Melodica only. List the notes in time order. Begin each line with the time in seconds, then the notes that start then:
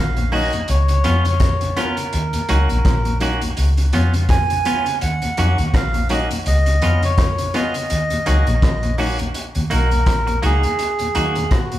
0.00 F5
0.34 D#5
0.70 C#5
1.27 C#5
1.79 A#4
4.30 G#5
5.02 F#5
5.69 F#5
5.76 F5
6.12 D#5
6.47 D#5
7.05 C#5
7.56 D#5
9.72 A#4
10.45 G#4
11.53 F#4